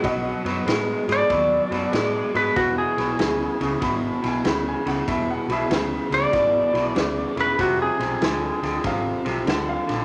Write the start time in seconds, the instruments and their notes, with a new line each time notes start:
Already playing: electric slide guitar B4
0.03 fingered electric bass B1, clean electric guitar B2 F#3, upright piano D#5 F#5, kick, snare, ride
0.44 fingered electric bass F#2, clean electric guitar B2 F#3, snare, ride
0.66 fingered electric bass A2, clean electric guitar B2 G#3, snare, ride
1.08 fingered electric bass G#2, clean electric guitar B2 G#3, snare, ride
1.12 electric slide guitar D5
1.30 fingered electric bass D#2, clean electric guitar B2 F#3, kick, snare, ride
1.70 fingered electric bass F#2, clean electric guitar B2 F#3, snare, ride
1.92 fingered electric bass A2, clean electric guitar B2 G#3, snare, ride
2.34 fingered electric bass G#2, clean electric guitar B2 G#3, electric slide guitar B4, snare, ride
2.56 fingered electric bass E1, clean electric guitar E2 B2, electric slide guitar F#4, kick, snare, ride
2.78 electric slide guitar G#4
2.97 fingered electric bass B1, clean electric guitar E2 B2, snare, ride
3.19 fingered electric bass D2, clean electric guitar E2 C#3, snare, ride
3.60 fingered electric bass C#2, clean electric guitar E2 C#3, snare, ride
3.80 fingered electric bass G#1, clean electric guitar E2 B2, kick, snare, ride
3.85 upright piano B5
4.23 fingered electric bass B1, clean electric guitar E2 B2, snare, ride
4.27 upright piano G#5
4.44 fingered electric bass D2, clean electric guitar E2 C#3, upright piano B5, snare, ride
4.68 upright piano G#5
4.86 fingered electric bass C#2, clean electric guitar E2 C#3, upright piano F#5, snare, ride
5.08 fingered electric bass E1, clean electric guitar E2 B2, upright piano E5, kick, snare, ride
5.31 upright piano F#5
5.48 fingered electric bass B1, clean electric guitar E2 B2, snare, ride
5.52 upright piano G#4 E5
5.69 fingered electric bass D2, clean electric guitar E2 C#3, snare, ride
6.10 fingered electric bass C#2, clean electric guitar E2 C#3, electric slide guitar D5, snare, ride
6.32 fingered electric bass G#1, clean electric guitar E2 B2, kick, snare, ride
6.73 fingered electric bass B1, clean electric guitar E2 B2, snare, ride
6.95 fingered electric bass D2, clean electric guitar E2 C#3, snare, ride
7.36 fingered electric bass E1, clean electric guitar E2 C#3, snare, ride
7.41 electric slide guitar B4
7.58 fingered electric bass F1, clean electric guitar F2 C3, electric slide guitar F#4, kick, snare, ride
7.82 electric slide guitar G#4
7.99 fingered electric bass B1, clean electric guitar F2 C3, snare, ride
8.21 fingered electric bass D2, clean electric guitar F2 D3, snare, ride
8.62 fingered electric bass D2, clean electric guitar F2 D3, snare, ride
8.84 fingered electric bass G#1, clean electric guitar F2 C3, upright piano F5, kick, snare, ride
9.25 fingered electric bass B1, clean electric guitar F2 C3, snare, ride
9.46 fingered electric bass D2, clean electric guitar F2 D3, upright piano F#5, snare, ride
9.69 upright piano F5
9.87 fingered electric bass A#1, clean electric guitar F2 D3, snare, ride